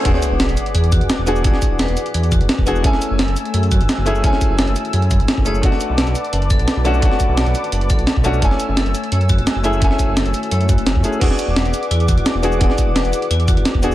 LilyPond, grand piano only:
\new Staff \with { instrumentName = "Grand piano" } { \time 4/4 \key e \mixolydian \tempo 4 = 172 <b d' fis' gis'>2.~ <b d' fis' gis'>8 <b d' fis' gis'>8 | <b d' fis' gis'>2.~ <b d' fis' gis'>8 <b d' fis' gis'>8 | <a cis' e' gis''>2.~ <a cis' e' gis''>8 <a cis' e' gis'>8 | <a cis' e' gis''>2.~ <a cis' e' gis''>8 <a cis' e' gis'>8 |
<a d' fis'>2.~ <a d' fis'>8 <a cis' d' fis'>8 | <a d' fis'>2.~ <a d' fis'>8 <a cis' d' fis'>8 | <a cis' e' gis''>2.~ <a cis' e' gis''>8 <a cis' e' gis'>8 | <a cis' e' gis''>2.~ <a cis' e' gis''>8 <a cis' e' gis'>8 |
<b d' fis' gis'>2.~ <b d' fis' gis'>8 <b d' fis' gis'>8 | <b d' fis' gis'>2.~ <b d' fis' gis'>8 <b d' fis' gis'>8 | }